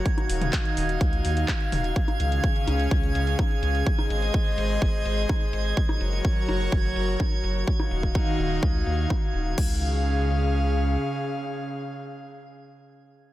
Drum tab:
CC |----------------|----------------|----------------|----------------|
HH |xxoxxxoxxxoxxxox|xxxxxxxxxxxxxxxx|xxxxxxxxxxxxxxxx|xxxx-xxx-xxx-xxx|
CP |----x-------x---|----------------|----------------|----------------|
T2 |---o----------o-|----------------|----------------|----------------|
CG |-o----------o---|-o----o-----o---|-o----------o---|-o----o-----o---|
BD |o---o---o---o---|o---o---o---o---|o---o---o---o---|o---o---o---o---|

CC |----------------|x---------------|----------------|
HH |-xxx--xxxxxx--xx|----------------|----------------|
CP |----------------|----------------|----------------|
T2 |----------------|----------------|----------------|
CG |-o----------o---|----------------|----------------|
BD |o--oo---o---o---|o---------------|----------------|